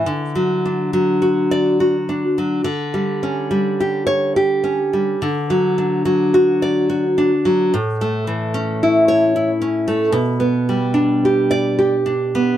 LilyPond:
\new Staff \with { instrumentName = "Nylon-string guitar" } { \time 3/4 \key d \major \tempo 4 = 71 << { r4 \tuplet 3/2 { r4 d''8 } r4 | r4 \tuplet 3/2 { r4 cis''8 } r4 | r4 \tuplet 3/2 { r4 d''8 } r4 | r4 \tuplet 3/2 { r4 cis''8 } r4 |
r4 \tuplet 3/2 { r4 d''8 } r4 | } \\ { \tuplet 3/2 { d8 fis8 d'8 fis8 fis'4 fis'8 d'8 fis8 } | \tuplet 3/2 { d8 g8 cis'8 g8 g'4 g'8 cis'8 g8 } | \tuplet 3/2 { d8 fis8 d'8 fis8 fis'4 fis'8 d'8 fis8 } | \tuplet 3/2 { a,8 a8 e8 cis'8 e'4 e'8 cis'8 a8 } |
\tuplet 3/2 { b,8 b8 g8 d'8 g'4 g'8 d'8 b8 } | } >> }